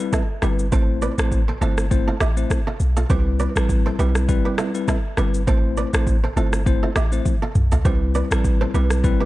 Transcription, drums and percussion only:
0.13 kick medium
0.13 cross-stick medium
0.13 shaker medium
0.42 cross-stick medium
0.42 shaker medium
0.59 shaker medium
0.72 kick loud
0.72 shaker medium
1.02 shaker medium
1.18 cross-stick loud
1.18 shaker medium
1.32 kick medium
1.32 shaker medium
1.62 shaker soft
1.78 cross-stick medium
1.78 shaker medium
1.91 kick loud
1.91 shaker medium
2.20 cross-stick loud
2.20 shaker medium
2.37 shaker medium
2.50 kick medium
2.50 cross-stick medium
2.50 shaker medium
2.80 shaker soft
2.97 shaker medium
3.10 kick loud
3.10 shaker medium
3.40 shaker medium
3.56 cross-stick loud
3.56 shaker medium
3.69 kick medium
3.69 shaker medium
3.99 shaker soft
4.15 cross-stick medium
4.15 shaker medium
4.29 kick loud
4.29 shaker medium
4.58 cross-stick loud
4.58 shaker medium
4.75 shaker medium
4.88 kick medium
4.88 cross-stick medium
4.88 shaker medium
5.17 cross-stick medium
5.17 shaker soft
5.34 shaker medium
5.47 kick loud
5.47 shaker medium
5.77 shaker medium
5.94 cross-stick loud
5.94 shaker medium
6.07 kick medium
6.07 shaker medium
6.37 shaker soft
6.53 cross-stick medium
6.53 shaker medium
6.66 kick loud
6.66 shaker medium
6.96 cross-stick loud
6.96 shaker medium
7.12 shaker medium
7.26 kick medium
7.26 high tom medium
7.26 shaker medium
7.55 mid tom medium
7.55 shaker soft
7.72 floor tom loud
7.72 shaker medium
7.85 kick loud
7.85 shaker medium
8.15 shaker medium
8.31 cross-stick loud
8.31 shaker medium
8.44 kick medium
8.44 shaker medium
8.74 shaker soft
8.90 cross-stick medium
8.90 shaker medium
9.04 kick loud
9.04 shaker medium

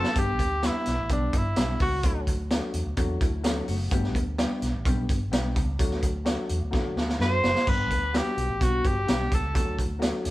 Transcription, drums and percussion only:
0.04 snare medium
0.15 kick loud
0.15 closed hi-hat medium
0.39 kick medium
0.39 closed hi-hat medium
0.63 snare medium
0.63 closed hi-hat medium
0.86 snare soft
0.86 closed hi-hat medium
1.09 kick loud
1.09 closed hi-hat medium
1.33 kick loud
1.33 closed hi-hat medium
1.56 snare loud
1.56 closed hi-hat medium
1.80 kick loud
1.80 open hi-hat soft
2.03 kick loud
2.03 closed hi-hat medium
2.27 kick medium
2.27 closed hi-hat medium
2.51 snare loud
2.51 closed hi-hat medium
2.74 closed hi-hat medium
2.97 kick loud
2.97 closed hi-hat medium
3.21 kick loud
3.21 closed hi-hat medium
3.44 snare loud
3.44 closed hi-hat medium
3.68 open hi-hat medium
3.91 kick loud
3.91 closed hi-hat medium
4.04 snare soft
4.15 kick medium
4.15 closed hi-hat medium
4.38 snare loud
4.38 closed hi-hat medium
4.62 snare soft
4.62 closed hi-hat medium
4.85 kick loud
4.85 closed hi-hat medium
5.09 kick medium
5.09 closed hi-hat medium
5.33 snare loud
5.33 closed hi-hat medium
5.56 kick loud
5.56 closed hi-hat medium
5.79 kick loud
5.79 closed hi-hat medium
5.91 snare soft
6.03 kick medium
6.03 closed hi-hat medium
6.26 snare loud
6.26 closed hi-hat medium
6.49 closed hi-hat medium
6.73 kick medium
6.73 snare medium
6.97 snare medium
7.09 snare medium
7.21 snare medium
7.44 snare loud
7.55 snare medium
7.67 kick loud
7.67 splash medium
7.91 kick medium
7.91 closed hi-hat medium
8.14 snare loud
8.14 closed hi-hat medium
8.38 closed hi-hat medium
8.61 kick medium
8.61 closed hi-hat medium
8.85 kick loud
8.85 closed hi-hat medium
9.08 snare loud
9.08 closed hi-hat medium
9.32 kick loud
9.32 closed hi-hat medium
9.55 kick loud
9.55 closed hi-hat medium
9.79 kick medium
9.79 closed hi-hat medium
10.02 snare loud
10.02 closed hi-hat medium
10.25 snare soft
10.25 closed hi-hat medium

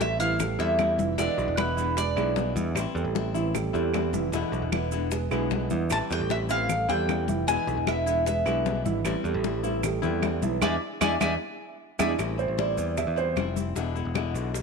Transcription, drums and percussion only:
0.01 high bongo medium
0.01 high conga loud
0.01 maracas soft
0.20 high bongo soft
0.20 high conga soft
0.20 maracas medium
0.40 high bongo medium
0.40 high conga soft
0.40 low conga medium
0.40 claves medium
0.40 maracas medium
0.59 high bongo soft
0.59 maracas soft
0.79 high bongo medium
0.79 low bongo medium
0.79 high conga medium
0.79 claves medium
0.79 maracas soft
0.99 high conga medium
0.99 maracas medium
1.18 high bongo medium
1.18 maracas medium
1.38 high bongo soft
1.38 high conga soft
1.38 maracas soft
1.57 high bongo medium
1.57 high conga loud
1.57 claves medium
1.57 maracas soft
1.77 high bongo soft
1.77 high conga soft
1.77 maracas medium
1.97 high bongo medium
1.97 high conga soft
1.97 maracas medium
2.17 high conga soft
2.17 claves medium
2.17 maracas soft
2.36 high bongo medium
2.36 low bongo medium
2.36 high conga medium
2.36 maracas soft
2.56 high bongo soft
2.56 high conga medium
2.56 maracas medium
2.76 high bongo medium
2.76 claves medium
2.76 maracas medium
2.96 high bongo soft
2.96 high conga soft
2.96 maracas soft
3.15 high bongo medium
3.15 high conga loud
3.15 maracas soft
3.35 high bongo soft
3.35 high conga soft
3.35 maracas medium
3.55 high bongo medium
3.55 high conga soft
3.55 low conga medium
3.55 claves medium
3.55 maracas medium
3.75 high bongo soft
3.75 high conga soft
3.75 maracas soft
3.94 high bongo medium
3.94 low bongo medium
3.94 high conga medium
3.94 claves medium
3.94 maracas soft
4.14 high conga medium
4.14 maracas medium
4.33 high bongo medium
4.33 maracas medium
4.53 high bongo soft
4.53 high conga soft
4.53 maracas soft
4.72 high bongo medium
4.72 high conga loud
4.72 claves medium
4.72 maracas soft
4.92 high bongo soft
4.92 high conga soft
4.92 maracas medium
5.11 high bongo medium
5.11 high conga soft
5.11 maracas medium
5.31 high conga soft
5.31 claves medium
5.31 maracas soft
5.51 high bongo medium
5.51 low bongo medium
5.51 high conga medium
5.51 maracas soft
5.70 high bongo soft
5.70 high conga medium
5.70 maracas medium
5.90 high bongo medium
5.90 high conga soft
5.90 claves medium
5.90 maracas medium
6.10 high bongo soft
6.10 high conga soft
6.10 maracas soft
6.30 high bongo medium
6.30 high conga loud
6.30 maracas soft
6.49 high bongo soft
6.49 high conga soft
6.49 maracas medium
6.69 high bongo medium
6.69 high conga soft
6.69 low conga medium
6.69 claves medium
6.69 maracas medium
6.89 high bongo soft
6.89 high conga soft
6.89 low conga medium
6.89 maracas soft
7.09 high bongo medium
7.09 low bongo medium
7.09 high conga medium
7.09 claves medium
7.09 maracas soft
7.28 high conga loud
7.28 maracas medium
7.48 high bongo medium
7.48 high conga soft
7.48 maracas medium
7.67 high bongo soft
7.67 high conga soft
7.67 maracas soft
7.87 high bongo medium
7.87 high conga loud
7.87 claves medium
7.87 maracas soft
8.07 high bongo soft
8.07 high conga soft
8.07 maracas medium
8.26 high bongo medium
8.26 high conga soft
8.26 maracas medium
8.46 high conga soft
8.46 claves medium
8.46 maracas soft
8.66 high bongo medium
8.66 low bongo medium
8.66 high conga medium
8.66 maracas soft
8.86 high bongo soft
8.86 high conga medium
8.86 maracas medium
9.05 high bongo medium
9.05 high conga soft
9.05 claves medium
9.05 maracas medium
9.25 high bongo soft
9.25 high conga soft
9.25 maracas soft
9.44 high bongo medium
9.44 high conga medium
9.44 maracas soft
9.64 high bongo soft
9.64 high conga soft
9.64 maracas medium
9.83 high bongo medium
9.83 high conga soft
9.83 low conga medium
9.83 claves medium
9.83 maracas medium
10.03 high bongo soft
10.03 high conga soft
10.03 low conga medium
10.03 maracas soft
10.23 high bongo medium
10.23 low bongo medium
10.23 high conga medium
10.23 claves medium
10.23 maracas soft
10.43 high conga medium
10.43 maracas medium
10.62 low bongo loud
10.62 high conga loud
10.62 claves loud
10.62 maracas medium
11.01 low bongo loud
11.01 high conga loud
11.01 claves loud
11.01 maracas loud
11.21 low bongo loud
11.21 high conga loud
11.21 claves loud
11.21 maracas loud
11.99 low bongo loud
11.99 high conga loud
11.99 claves loud
11.99 maracas loud
12.19 high bongo medium
12.19 high conga soft
12.19 claves medium
12.19 maracas medium
12.39 high bongo soft
12.39 high conga soft
12.39 maracas soft
12.58 high bongo medium
12.58 high conga loud
12.58 maracas soft
12.78 high bongo soft
12.78 high conga soft
12.78 maracas medium
12.97 high bongo medium
12.97 high conga soft
12.97 low conga medium
12.97 claves medium
12.97 maracas medium
13.17 high bongo soft
13.17 high conga soft
13.17 maracas soft
13.37 high bongo medium
13.37 low bongo medium
13.37 high conga medium
13.37 claves medium
13.37 maracas soft
13.57 high conga medium
13.57 maracas medium
13.76 high bongo medium
13.76 high conga soft
13.76 maracas medium
13.96 high bongo soft
13.96 high conga soft
13.96 maracas soft
14.15 high bongo medium
14.15 high conga loud
14.15 claves medium
14.15 maracas soft
14.35 high bongo soft
14.35 high conga soft
14.35 maracas medium
14.54 high bongo medium
14.54 high conga soft
14.54 maracas medium

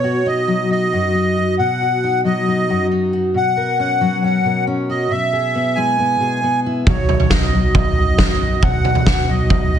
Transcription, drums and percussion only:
6.87 kick medium
6.87 floor tom medium
7.09 floor tom medium
7.20 floor tom medium
7.30 kick medium
7.30 snare medium
7.75 kick medium
7.75 floor tom medium
8.18 kick medium
8.18 snare medium
8.63 kick medium
8.63 floor tom medium
8.85 floor tom medium
8.95 floor tom medium
9.06 kick medium
9.06 snare medium
9.50 kick medium
9.50 floor tom medium

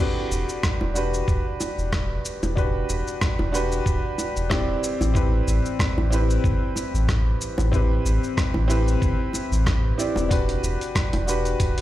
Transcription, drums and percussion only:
0.32 cabasa medium
0.49 cabasa soft
0.63 kick loud
0.63 cross-stick loud
0.63 cabasa soft
0.81 high bongo medium
0.96 cabasa medium
1.14 cabasa soft
1.28 kick loud
1.28 cabasa soft
1.60 high bongo medium
1.60 cabasa medium
1.79 cabasa soft
1.92 kick loud
1.92 cross-stick loud
1.92 cabasa soft
2.25 cabasa medium
2.43 high bongo medium
2.43 cabasa soft
2.57 kick loud
2.57 cabasa soft
2.89 cabasa medium
3.07 cabasa soft
3.21 kick loud
3.21 cross-stick loud
3.21 cabasa soft
3.39 high bongo medium
3.54 cabasa medium
3.72 cabasa soft
3.86 kick loud
3.86 cabasa soft
4.18 high bongo medium
4.18 cabasa medium
4.37 cabasa soft
4.50 kick loud
4.50 cross-stick loud
4.50 cabasa soft
4.84 cabasa medium
5.01 high bongo medium
5.01 cabasa soft
5.15 kick loud
5.15 cabasa soft
5.48 cabasa medium
5.66 cabasa soft
5.79 kick loud
5.79 cross-stick loud
5.79 cabasa soft
5.98 high bongo medium
6.13 cabasa medium
6.30 cabasa soft
6.44 kick loud
6.44 cabasa soft
6.76 high bongo medium
6.76 cabasa medium
6.95 cabasa soft
7.08 kick loud
7.08 cross-stick medium
7.08 cabasa soft
7.41 cabasa medium
7.58 high bongo medium
7.58 cabasa soft
7.73 kick loud
7.73 cabasa soft
8.06 cabasa medium
8.23 cabasa soft
8.37 kick loud
8.37 cross-stick medium
8.37 cabasa soft
8.54 high bongo medium
8.70 cabasa medium
8.88 cabasa soft
9.02 kick loud
9.02 cabasa soft
9.33 high bongo medium
9.33 cabasa medium
9.52 cabasa soft
9.66 kick loud
9.66 cross-stick medium
9.66 cabasa soft
9.99 cabasa medium
10.16 high bongo medium
10.16 cabasa soft
10.31 kick loud
10.31 closed hi-hat medium
10.31 cabasa soft
10.49 closed hi-hat soft
10.64 cabasa medium
10.81 closed hi-hat soft
10.81 cabasa soft
10.95 kick loud
10.95 cross-stick loud
10.95 closed hi-hat medium
10.95 cabasa soft
11.13 closed hi-hat soft
11.13 high bongo medium
11.28 cabasa medium
11.45 closed hi-hat soft
11.45 cabasa soft
11.60 kick loud
11.60 closed hi-hat medium
11.60 cabasa soft
11.78 closed hi-hat soft

